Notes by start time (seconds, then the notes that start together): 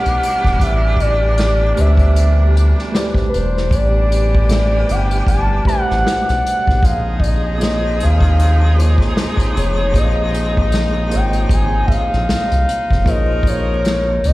Already playing: B2 C3 E3 G3 A3 D4 G4 B4 C5 E5 F#5
0.06 B1, closed hi-hat
0.23 closed hi-hat
0.44 E1, kick, snare
0.60 A1 E5, kick, closed hi-hat
0.97 D5, kick, closed hi-hat
1.38 snare, closed hi-hat
1.75 D2 A3 G4 B4 C5, closed hi-hat
1.79 E5
1.98 kick, closed hi-hat
2.16 closed hi-hat
2.57 closed hi-hat
2.79 snare
2.92 A3 G4 B4 C5, snare
2.96 D5, closed hi-hat
3.14 kick, snare
3.29 B4
3.34 E1 C5, closed hi-hat
3.57 snare
3.71 A1 E3 D4 G4 D5, kick, closed hi-hat
4.12 closed hi-hat
4.35 kick
4.48 A3 G4 B4 C5, snare, closed hi-hat
4.52 E5
4.89 G1 G5, closed hi-hat
5.11 closed hi-hat
5.27 G1 A5, kick, closed hi-hat
5.65 A3 G4 B4 C5 F#5, kick, closed hi-hat
5.69 E5
5.91 A1, snare
6.07 B1, snare, closed hi-hat
6.29 B1, snare, closed hi-hat
6.46 closed hi-hat
6.67 B1, kick, snare
6.82 A#1 C3 C#3 F3 G#3 D#4 G#4 F5, kick, closed hi-hat
7.19 D5, kick
7.24 D#5, closed hi-hat
7.58 A#3 F4 G#4 C5 C#5, closed hi-hat
7.63 D#5, snare
8.00 D#2 F5, closed hi-hat
8.21 kick, closed hi-hat
8.40 closed hi-hat
8.75 A#3 F4 G#4 C5 C#5
8.80 D#5, closed hi-hat
8.98 kick, snare
9.17 snare, closed hi-hat
9.37 kick, snare, closed hi-hat
9.56 F1 C#5, closed hi-hat
9.93 A#1 A#3 F4 G#4 C5 C#5, kick, closed hi-hat
9.97 D#5
10.04 F5
10.35 closed hi-hat
10.57 kick
10.72 snare, closed hi-hat
11.09 G#1 A#3 F4 G#4 C5 C#5, closed hi-hat
11.14 D#5 G5
11.33 closed hi-hat
11.49 G#1, kick, closed hi-hat
11.54 G#5
11.86 E5, kick
11.92 F5, closed hi-hat
12.13 A#1, snare
12.29 C2, snare, closed hi-hat
12.52 C2, closed hi-hat
12.69 closed hi-hat
12.90 F1, kick, snare
13.05 A#1 F3 A#3 D#4 F4 G#4 A#4 C5 C#5 D#5, kick, closed hi-hat
13.09 F5
13.43 C#5, kick, closed hi-hat
13.85 snare, closed hi-hat
14.24 C#2 D#5, closed hi-hat